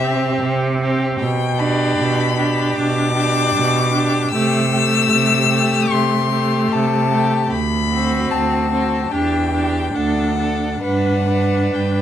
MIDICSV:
0, 0, Header, 1, 5, 480
1, 0, Start_track
1, 0, Key_signature, 1, "major"
1, 0, Tempo, 785340
1, 740, Time_signature, 4, 2, 24, 8
1, 3131, Tempo, 800000
1, 5531, Tempo, 852273
1, 6491, Tempo, 916031
1, 7114, End_track
2, 0, Start_track
2, 0, Title_t, "Violin"
2, 0, Program_c, 0, 40
2, 0, Note_on_c, 0, 76, 85
2, 499, Note_off_c, 0, 76, 0
2, 736, Note_on_c, 0, 79, 80
2, 975, Note_on_c, 0, 83, 80
2, 985, Note_off_c, 0, 79, 0
2, 1687, Note_on_c, 0, 86, 97
2, 1696, Note_off_c, 0, 83, 0
2, 2631, Note_off_c, 0, 86, 0
2, 2635, Note_on_c, 0, 88, 107
2, 3601, Note_on_c, 0, 84, 80
2, 3610, Note_off_c, 0, 88, 0
2, 4088, Note_on_c, 0, 81, 76
2, 4097, Note_off_c, 0, 84, 0
2, 4568, Note_off_c, 0, 81, 0
2, 4571, Note_on_c, 0, 83, 91
2, 5044, Note_on_c, 0, 81, 68
2, 5053, Note_off_c, 0, 83, 0
2, 5530, Note_on_c, 0, 79, 66
2, 5538, Note_off_c, 0, 81, 0
2, 5998, Note_on_c, 0, 78, 68
2, 6007, Note_off_c, 0, 79, 0
2, 6492, Note_off_c, 0, 78, 0
2, 6498, Note_on_c, 0, 78, 67
2, 6973, Note_on_c, 0, 79, 56
2, 6981, Note_off_c, 0, 78, 0
2, 7114, Note_off_c, 0, 79, 0
2, 7114, End_track
3, 0, Start_track
3, 0, Title_t, "Violin"
3, 0, Program_c, 1, 40
3, 11, Note_on_c, 1, 67, 48
3, 487, Note_off_c, 1, 67, 0
3, 498, Note_on_c, 1, 67, 50
3, 735, Note_off_c, 1, 67, 0
3, 970, Note_on_c, 1, 67, 56
3, 1443, Note_off_c, 1, 67, 0
3, 1447, Note_on_c, 1, 67, 50
3, 1923, Note_off_c, 1, 67, 0
3, 1928, Note_on_c, 1, 67, 52
3, 2397, Note_off_c, 1, 67, 0
3, 2409, Note_on_c, 1, 67, 49
3, 2644, Note_off_c, 1, 67, 0
3, 2648, Note_on_c, 1, 67, 53
3, 2879, Note_off_c, 1, 67, 0
3, 2882, Note_on_c, 1, 67, 49
3, 3358, Note_off_c, 1, 67, 0
3, 3366, Note_on_c, 1, 67, 51
3, 3840, Note_off_c, 1, 67, 0
3, 3848, Note_on_c, 1, 67, 46
3, 4320, Note_off_c, 1, 67, 0
3, 4326, Note_on_c, 1, 67, 48
3, 4563, Note_off_c, 1, 67, 0
3, 4803, Note_on_c, 1, 66, 46
3, 5276, Note_off_c, 1, 66, 0
3, 5284, Note_on_c, 1, 66, 44
3, 5523, Note_off_c, 1, 66, 0
3, 5526, Note_on_c, 1, 67, 45
3, 5757, Note_off_c, 1, 67, 0
3, 5763, Note_on_c, 1, 67, 43
3, 5990, Note_off_c, 1, 67, 0
3, 5993, Note_on_c, 1, 69, 42
3, 6232, Note_off_c, 1, 69, 0
3, 6238, Note_on_c, 1, 69, 44
3, 6485, Note_off_c, 1, 69, 0
3, 6488, Note_on_c, 1, 71, 40
3, 6726, Note_off_c, 1, 71, 0
3, 6733, Note_on_c, 1, 71, 45
3, 7114, Note_off_c, 1, 71, 0
3, 7114, End_track
4, 0, Start_track
4, 0, Title_t, "Viola"
4, 0, Program_c, 2, 41
4, 9, Note_on_c, 2, 60, 48
4, 486, Note_off_c, 2, 60, 0
4, 494, Note_on_c, 2, 60, 47
4, 733, Note_off_c, 2, 60, 0
4, 974, Note_on_c, 2, 62, 59
4, 1445, Note_off_c, 2, 62, 0
4, 1452, Note_on_c, 2, 62, 52
4, 1926, Note_off_c, 2, 62, 0
4, 1933, Note_on_c, 2, 62, 53
4, 2396, Note_off_c, 2, 62, 0
4, 2399, Note_on_c, 2, 62, 47
4, 2641, Note_off_c, 2, 62, 0
4, 2648, Note_on_c, 2, 57, 48
4, 2880, Note_off_c, 2, 57, 0
4, 2884, Note_on_c, 2, 57, 59
4, 3359, Note_off_c, 2, 57, 0
4, 3373, Note_on_c, 2, 57, 50
4, 3844, Note_off_c, 2, 57, 0
4, 3855, Note_on_c, 2, 57, 51
4, 4324, Note_off_c, 2, 57, 0
4, 4333, Note_on_c, 2, 57, 42
4, 4567, Note_off_c, 2, 57, 0
4, 4817, Note_on_c, 2, 60, 54
4, 5283, Note_off_c, 2, 60, 0
4, 5290, Note_on_c, 2, 60, 47
4, 5528, Note_off_c, 2, 60, 0
4, 5532, Note_on_c, 2, 62, 44
4, 5760, Note_off_c, 2, 62, 0
4, 5764, Note_on_c, 2, 62, 41
4, 5990, Note_off_c, 2, 62, 0
4, 5993, Note_on_c, 2, 62, 38
4, 6232, Note_off_c, 2, 62, 0
4, 6235, Note_on_c, 2, 62, 38
4, 6485, Note_off_c, 2, 62, 0
4, 6491, Note_on_c, 2, 62, 39
4, 6728, Note_off_c, 2, 62, 0
4, 6731, Note_on_c, 2, 62, 45
4, 7114, Note_off_c, 2, 62, 0
4, 7114, End_track
5, 0, Start_track
5, 0, Title_t, "Cello"
5, 0, Program_c, 3, 42
5, 0, Note_on_c, 3, 48, 60
5, 195, Note_off_c, 3, 48, 0
5, 251, Note_on_c, 3, 48, 69
5, 681, Note_off_c, 3, 48, 0
5, 734, Note_on_c, 3, 47, 62
5, 1159, Note_off_c, 3, 47, 0
5, 1210, Note_on_c, 3, 47, 62
5, 1637, Note_off_c, 3, 47, 0
5, 1697, Note_on_c, 3, 47, 60
5, 2118, Note_off_c, 3, 47, 0
5, 2167, Note_on_c, 3, 47, 64
5, 2592, Note_off_c, 3, 47, 0
5, 2653, Note_on_c, 3, 48, 64
5, 3075, Note_off_c, 3, 48, 0
5, 3127, Note_on_c, 3, 48, 66
5, 3553, Note_off_c, 3, 48, 0
5, 3606, Note_on_c, 3, 48, 54
5, 4034, Note_off_c, 3, 48, 0
5, 4085, Note_on_c, 3, 48, 66
5, 4510, Note_off_c, 3, 48, 0
5, 4567, Note_on_c, 3, 38, 65
5, 4991, Note_off_c, 3, 38, 0
5, 5046, Note_on_c, 3, 38, 51
5, 5473, Note_off_c, 3, 38, 0
5, 5525, Note_on_c, 3, 40, 56
5, 5941, Note_off_c, 3, 40, 0
5, 5997, Note_on_c, 3, 38, 58
5, 6431, Note_off_c, 3, 38, 0
5, 6492, Note_on_c, 3, 43, 55
5, 6917, Note_off_c, 3, 43, 0
5, 6970, Note_on_c, 3, 43, 49
5, 7114, Note_off_c, 3, 43, 0
5, 7114, End_track
0, 0, End_of_file